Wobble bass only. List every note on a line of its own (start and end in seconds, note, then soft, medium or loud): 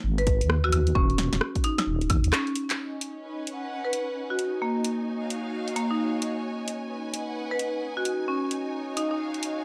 0.04 0.43 G#1 medium
0.41 0.70 D#2 loud
0.73 0.93 D#2 medium
0.95 1.29 D#1 loud
1.33 1.40 D#1 medium
1.87 2.09 D#1 medium
2.10 2.22 D#2 medium
2.24 2.31 D#2 medium